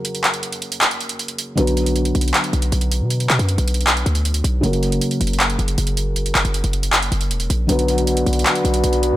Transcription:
Already playing: C#3 F#3 A#3 F#4 A#4
0.05 closed hi-hat
0.15 closed hi-hat
0.24 clap, closed hi-hat
0.34 closed hi-hat
0.43 closed hi-hat
0.52 closed hi-hat
0.62 closed hi-hat, open hi-hat
0.72 closed hi-hat
0.81 clap, closed hi-hat
0.91 closed hi-hat
1.01 closed hi-hat
1.09 closed hi-hat
1.19 closed hi-hat
1.28 closed hi-hat
1.38 closed hi-hat
1.55 B1 D3 F#3 B3 F#4, closed hi-hat
1.60 B4
1.67 closed hi-hat
1.77 closed hi-hat
1.86 closed hi-hat
1.96 closed hi-hat
2.05 closed hi-hat
2.15 B1, closed hi-hat
2.21 closed hi-hat
2.28 closed hi-hat
2.34 clap, closed hi-hat
2.44 closed hi-hat
2.53 B1, closed hi-hat
2.62 closed hi-hat
2.72 B1, closed hi-hat
2.81 closed hi-hat
2.92 closed hi-hat
3.01 B2
3.10 closed hi-hat
3.20 closed hi-hat
3.30 B2, clap, closed hi-hat
3.39 F#2, closed hi-hat
3.49 closed hi-hat
3.58 B1, closed hi-hat
3.68 closed hi-hat, open hi-hat
3.74 closed hi-hat
3.81 closed hi-hat
3.87 clap, closed hi-hat
3.97 closed hi-hat
4.06 D2, closed hi-hat
4.15 closed hi-hat
4.25 closed hi-hat
4.34 closed hi-hat
4.44 B1, closed hi-hat
4.61 F#1 C#3 F#3 A#3 F#4, closed hi-hat
4.66 A#4
4.73 closed hi-hat
4.83 closed hi-hat
4.92 closed hi-hat
5.01 closed hi-hat
5.11 closed hi-hat
5.21 F#1, closed hi-hat
5.27 closed hi-hat
5.33 closed hi-hat
5.40 clap, closed hi-hat
5.50 closed hi-hat
5.59 F#1, closed hi-hat
5.68 closed hi-hat
5.78 F#1, closed hi-hat
5.87 closed hi-hat
5.97 closed hi-hat
6.16 closed hi-hat
6.26 closed hi-hat
6.35 F#1, clap, closed hi-hat
6.45 F#1, closed hi-hat
6.54 closed hi-hat
6.64 F#1, closed hi-hat
6.73 closed hi-hat, open hi-hat
6.83 closed hi-hat
6.93 clap, closed hi-hat
7.03 closed hi-hat
7.12 F#1, closed hi-hat
7.21 closed hi-hat
7.31 E1, closed hi-hat
7.40 closed hi-hat
7.50 A#1, closed hi-hat
7.67 B1 D3 F#3 B3 D4 F#4, closed hi-hat
7.72 B4
7.79 closed hi-hat
7.88 closed hi-hat
7.98 closed hi-hat
8.07 closed hi-hat
8.17 closed hi-hat
8.26 B1, closed hi-hat
8.33 closed hi-hat
8.39 closed hi-hat
8.46 clap, closed hi-hat
8.55 closed hi-hat
8.65 B1, closed hi-hat
8.74 closed hi-hat
8.84 B1, closed hi-hat
8.93 closed hi-hat
9.03 closed hi-hat
9.12 B2

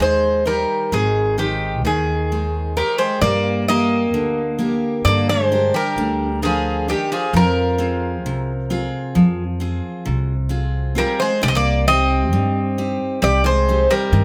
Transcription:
Already playing: D#4 G#4 C5
0.00 D#2 D#3 G#3 C5
0.45 G3 D#4 A#4 C5
0.92 G#1 D#3 G#3 G#4
1.38 D#3 D#4 G4 C5
1.83 D#2 D#3 G#4
2.32 G#3 D#4 C5
2.76 D#3 D#4 G4 A#4 C5
2.98 G#3 C5
3.21 G2 G3 A#3 D5
3.68 A#3 G4 A#4 D#5
4.14 D2 D3
4.59 A#3 G4 A#4
5.05 G2 D3 A#3 D5
5.29 G#3 C5
5.52 D4 G4 A#4
5.74 G3 A#4
5.96 D2 D3
6.42 F3 D4 G#4 A#4 G5
6.88 D#3 D4 G4 A#4
7.12 F3 G#4
7.33 F2 F3 A#4
7.78 C4 F4 G#4
8.25 C2 C3
8.70 C4 F4 G#4
9.15 F2 F3
9.60 C4 F4 G#4
10.05 C2 C3
10.49 C4 F4 G#4
10.95 G3 C4 F4 G#4 A#4
11.20 G#3 C5
11.42 C2 C3 G3 D5
11.48 C4 D#5
11.55 A#3 D5
11.88 C4 D#4 G4 D#5
12.33 G2 G3
12.78 C4 D#4 G4
13.22 C2 C3 G3 D5
13.44 G#3 C5
13.69 C4 D#4 G4
13.90 G3 A#4
14.12 G2 D#3

